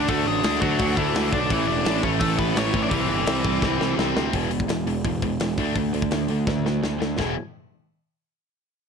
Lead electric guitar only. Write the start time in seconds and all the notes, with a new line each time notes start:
0.09 A3 A4
0.28 G#3 G#4
0.60 F#3 F#4
0.97 E3 E4
1.33 D4 D5
1.51 E3 E4
1.67 D4 D5
2.03 C#4 C#5
2.20 A3 A4
2.38 B3 B4
2.58 C#4 C#5
2.82 D4 D5
2.90 E3 E4